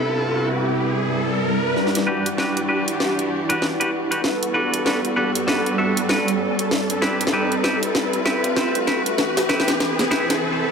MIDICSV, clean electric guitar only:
0, 0, Header, 1, 2, 480
1, 0, Start_track
1, 0, Key_signature, 1, "minor"
1, 0, Tempo, 618557
1, 1370, Time_signature, 4, 2, 24, 8
1, 8315, End_track
2, 0, Start_track
2, 0, Title_t, "Clean electric guitar"
2, 0, Program_c, 0, 27
2, 0, Note_on_c, 0, 48, 69
2, 0, Note_on_c, 0, 59, 54
2, 0, Note_on_c, 0, 62, 60
2, 0, Note_on_c, 0, 64, 58
2, 0, Note_on_c, 0, 67, 73
2, 1347, Note_off_c, 0, 59, 0
2, 1347, Note_off_c, 0, 64, 0
2, 1347, Note_off_c, 0, 67, 0
2, 1348, Note_off_c, 0, 48, 0
2, 1348, Note_off_c, 0, 62, 0
2, 1604, Note_on_c, 0, 71, 92
2, 1609, Note_on_c, 0, 67, 86
2, 1612, Note_on_c, 0, 66, 78
2, 1615, Note_on_c, 0, 62, 83
2, 1772, Note_off_c, 0, 62, 0
2, 1772, Note_off_c, 0, 66, 0
2, 1772, Note_off_c, 0, 67, 0
2, 1772, Note_off_c, 0, 71, 0
2, 1846, Note_on_c, 0, 62, 91
2, 1849, Note_on_c, 0, 66, 72
2, 1852, Note_on_c, 0, 67, 69
2, 1856, Note_on_c, 0, 71, 78
2, 2013, Note_off_c, 0, 62, 0
2, 2013, Note_off_c, 0, 66, 0
2, 2013, Note_off_c, 0, 67, 0
2, 2013, Note_off_c, 0, 71, 0
2, 2085, Note_on_c, 0, 71, 94
2, 2087, Note_on_c, 0, 67, 69
2, 2091, Note_on_c, 0, 66, 66
2, 2095, Note_on_c, 0, 62, 81
2, 2196, Note_off_c, 0, 66, 0
2, 2196, Note_off_c, 0, 67, 0
2, 2197, Note_off_c, 0, 62, 0
2, 2197, Note_off_c, 0, 71, 0
2, 2711, Note_on_c, 0, 71, 102
2, 2714, Note_on_c, 0, 67, 77
2, 2718, Note_on_c, 0, 66, 82
2, 2722, Note_on_c, 0, 62, 83
2, 2837, Note_off_c, 0, 62, 0
2, 2837, Note_off_c, 0, 66, 0
2, 2837, Note_off_c, 0, 67, 0
2, 2838, Note_off_c, 0, 71, 0
2, 2950, Note_on_c, 0, 71, 92
2, 2953, Note_on_c, 0, 67, 77
2, 2958, Note_on_c, 0, 66, 68
2, 2961, Note_on_c, 0, 62, 73
2, 3025, Note_off_c, 0, 62, 0
2, 3025, Note_off_c, 0, 66, 0
2, 3025, Note_off_c, 0, 67, 0
2, 3025, Note_off_c, 0, 71, 0
2, 3190, Note_on_c, 0, 71, 93
2, 3193, Note_on_c, 0, 67, 71
2, 3198, Note_on_c, 0, 66, 79
2, 3201, Note_on_c, 0, 62, 69
2, 3265, Note_off_c, 0, 62, 0
2, 3265, Note_off_c, 0, 66, 0
2, 3265, Note_off_c, 0, 67, 0
2, 3265, Note_off_c, 0, 71, 0
2, 3525, Note_on_c, 0, 71, 99
2, 3530, Note_on_c, 0, 69, 74
2, 3533, Note_on_c, 0, 66, 78
2, 3537, Note_on_c, 0, 62, 79
2, 3747, Note_off_c, 0, 62, 0
2, 3747, Note_off_c, 0, 66, 0
2, 3747, Note_off_c, 0, 69, 0
2, 3747, Note_off_c, 0, 71, 0
2, 3765, Note_on_c, 0, 62, 83
2, 3769, Note_on_c, 0, 66, 65
2, 3774, Note_on_c, 0, 69, 65
2, 3778, Note_on_c, 0, 71, 75
2, 3877, Note_off_c, 0, 62, 0
2, 3877, Note_off_c, 0, 69, 0
2, 3877, Note_off_c, 0, 71, 0
2, 3878, Note_off_c, 0, 66, 0
2, 4007, Note_on_c, 0, 71, 96
2, 4011, Note_on_c, 0, 69, 74
2, 4013, Note_on_c, 0, 66, 73
2, 4015, Note_on_c, 0, 62, 77
2, 4118, Note_off_c, 0, 62, 0
2, 4118, Note_off_c, 0, 66, 0
2, 4118, Note_off_c, 0, 69, 0
2, 4118, Note_off_c, 0, 71, 0
2, 4246, Note_on_c, 0, 62, 77
2, 4251, Note_on_c, 0, 66, 66
2, 4253, Note_on_c, 0, 69, 58
2, 4258, Note_on_c, 0, 71, 72
2, 4467, Note_off_c, 0, 62, 0
2, 4467, Note_off_c, 0, 66, 0
2, 4467, Note_off_c, 0, 69, 0
2, 4467, Note_off_c, 0, 71, 0
2, 4486, Note_on_c, 0, 76, 94
2, 4489, Note_on_c, 0, 69, 81
2, 4492, Note_on_c, 0, 66, 76
2, 4497, Note_on_c, 0, 62, 70
2, 4653, Note_off_c, 0, 62, 0
2, 4653, Note_off_c, 0, 66, 0
2, 4653, Note_off_c, 0, 69, 0
2, 4653, Note_off_c, 0, 76, 0
2, 4723, Note_on_c, 0, 62, 83
2, 4728, Note_on_c, 0, 66, 77
2, 4733, Note_on_c, 0, 69, 72
2, 4736, Note_on_c, 0, 71, 81
2, 4892, Note_off_c, 0, 62, 0
2, 4892, Note_off_c, 0, 66, 0
2, 4892, Note_off_c, 0, 71, 0
2, 4893, Note_off_c, 0, 69, 0
2, 5445, Note_on_c, 0, 64, 85
2, 5448, Note_on_c, 0, 71, 95
2, 5453, Note_on_c, 0, 67, 73
2, 5455, Note_on_c, 0, 60, 82
2, 5612, Note_off_c, 0, 60, 0
2, 5612, Note_off_c, 0, 64, 0
2, 5612, Note_off_c, 0, 67, 0
2, 5613, Note_off_c, 0, 71, 0
2, 5685, Note_on_c, 0, 60, 88
2, 5690, Note_on_c, 0, 67, 77
2, 5693, Note_on_c, 0, 71, 92
2, 5696, Note_on_c, 0, 64, 72
2, 5852, Note_off_c, 0, 64, 0
2, 5853, Note_off_c, 0, 60, 0
2, 5853, Note_off_c, 0, 67, 0
2, 5853, Note_off_c, 0, 71, 0
2, 5925, Note_on_c, 0, 64, 71
2, 5929, Note_on_c, 0, 71, 90
2, 5932, Note_on_c, 0, 67, 69
2, 5935, Note_on_c, 0, 60, 78
2, 6037, Note_off_c, 0, 60, 0
2, 6037, Note_off_c, 0, 64, 0
2, 6037, Note_off_c, 0, 67, 0
2, 6037, Note_off_c, 0, 71, 0
2, 6406, Note_on_c, 0, 64, 75
2, 6408, Note_on_c, 0, 71, 101
2, 6411, Note_on_c, 0, 67, 78
2, 6413, Note_on_c, 0, 60, 79
2, 6572, Note_off_c, 0, 60, 0
2, 6572, Note_off_c, 0, 64, 0
2, 6572, Note_off_c, 0, 67, 0
2, 6572, Note_off_c, 0, 71, 0
2, 6644, Note_on_c, 0, 60, 83
2, 6650, Note_on_c, 0, 67, 76
2, 6655, Note_on_c, 0, 71, 86
2, 6658, Note_on_c, 0, 64, 69
2, 6813, Note_off_c, 0, 60, 0
2, 6813, Note_off_c, 0, 64, 0
2, 6813, Note_off_c, 0, 67, 0
2, 6813, Note_off_c, 0, 71, 0
2, 6885, Note_on_c, 0, 64, 73
2, 6888, Note_on_c, 0, 71, 81
2, 6892, Note_on_c, 0, 67, 69
2, 6894, Note_on_c, 0, 60, 66
2, 6997, Note_off_c, 0, 60, 0
2, 6997, Note_off_c, 0, 64, 0
2, 6997, Note_off_c, 0, 67, 0
2, 6997, Note_off_c, 0, 71, 0
2, 7365, Note_on_c, 0, 64, 90
2, 7368, Note_on_c, 0, 71, 100
2, 7371, Note_on_c, 0, 67, 72
2, 7374, Note_on_c, 0, 60, 85
2, 7532, Note_off_c, 0, 60, 0
2, 7532, Note_off_c, 0, 64, 0
2, 7532, Note_off_c, 0, 67, 0
2, 7532, Note_off_c, 0, 71, 0
2, 7845, Note_on_c, 0, 64, 92
2, 7848, Note_on_c, 0, 71, 107
2, 7851, Note_on_c, 0, 67, 82
2, 7855, Note_on_c, 0, 60, 90
2, 8012, Note_off_c, 0, 60, 0
2, 8012, Note_off_c, 0, 64, 0
2, 8012, Note_off_c, 0, 67, 0
2, 8012, Note_off_c, 0, 71, 0
2, 8315, End_track
0, 0, End_of_file